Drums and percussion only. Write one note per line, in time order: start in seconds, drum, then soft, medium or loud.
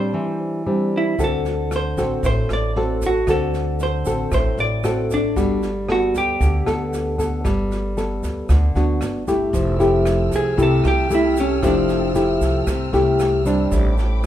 1.19 kick medium
1.19 snare soft
1.19 shaker medium
1.45 snare soft
1.45 shaker soft
1.71 cross-stick medium
1.71 snare soft
1.71 shaker medium
1.97 kick soft
1.97 snare soft
1.97 shaker medium
2.23 kick medium
2.23 snare soft
2.23 shaker medium
2.49 cross-stick medium
2.49 snare soft
2.49 shaker soft
2.75 snare soft
3.01 kick soft
3.01 snare soft
3.01 shaker medium
3.27 kick medium
3.27 cross-stick medium
3.27 snare soft
3.27 shaker medium
3.54 snare soft
3.54 shaker soft
3.80 snare soft
3.80 shaker medium
4.05 kick soft
4.05 snare soft
4.05 shaker medium
4.32 kick medium
4.32 cross-stick medium
4.32 snare soft
4.32 shaker medium
4.58 snare soft
4.58 shaker soft
4.84 cross-stick medium
4.84 snare soft
4.84 shaker medium
5.10 kick soft
5.10 snare soft
5.10 shaker medium
5.36 kick medium
5.36 snare soft
5.36 shaker medium
5.62 snare soft
5.62 shaker soft
5.89 cross-stick medium
5.89 snare soft
6.15 kick soft
6.15 snare soft
6.15 shaker medium
6.41 kick medium
6.41 snare soft
6.41 shaker medium
6.66 cross-stick medium
6.66 snare soft
6.66 shaker soft
6.93 snare soft
6.93 shaker medium
7.19 kick soft
7.19 snare soft
7.19 shaker medium
7.45 kick medium
7.45 cross-stick medium
7.45 snare soft
7.45 shaker medium
7.71 snare soft
7.71 shaker soft
7.97 snare soft
7.97 shaker medium
8.23 kick soft
8.23 snare soft
8.23 shaker medium
8.49 kick medium
8.49 cross-stick medium
8.49 snare soft
8.49 shaker medium
8.75 snare soft
8.75 shaker soft
9.01 cross-stick medium
9.01 snare soft
9.01 shaker medium
9.27 kick soft
9.27 snare soft
9.27 shaker medium
9.53 kick medium
9.53 snare soft
9.53 shaker medium
9.79 snare soft
9.79 shaker soft
10.05 cross-stick medium
10.05 snare soft
10.05 shaker medium
10.31 kick soft
10.31 snare soft
10.31 shaker medium
10.57 kick medium
10.57 snare soft
10.57 shaker medium
10.84 cross-stick medium
10.84 snare soft
10.84 shaker soft
11.10 snare soft
11.10 shaker medium
11.36 kick soft
11.36 snare soft
11.36 shaker medium
11.63 kick medium
11.63 cross-stick medium
11.63 snare soft
11.63 shaker medium
11.89 snare soft
11.89 shaker soft
12.15 snare soft
12.15 shaker medium
12.41 kick soft
12.41 snare soft
12.41 shaker medium
12.67 kick medium
12.67 cross-stick medium
12.67 snare soft
12.67 shaker medium
12.93 snare soft
12.93 shaker soft
13.19 cross-stick medium
13.19 snare soft
13.19 shaker medium
13.45 kick soft
13.45 snare soft
13.45 shaker medium
13.72 kick medium
13.72 snare soft
13.72 shaker medium
13.98 snare soft
13.98 shaker soft